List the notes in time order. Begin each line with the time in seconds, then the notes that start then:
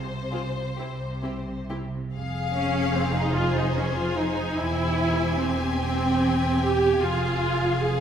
Already playing: C2 C3 C5
0.31 C4 F4 G#4
0.78 C2 C3 C4 E4 G4
1.22 C4 E4 G4
1.69 C4 E4 G4
2.13 F1 F2 G#4 F5
2.54 C#4
2.94 C4
3.14 D#4
3.34 F4 C5 G#5
3.56 D#4
3.78 C#4
3.97 F4
4.17 D#4
4.59 E1 E2 E4 G4 C5
5.39 C4
5.80 C4 G5
6.63 G4
7.01 F1 F2 F4 G#4 F5
7.81 G#4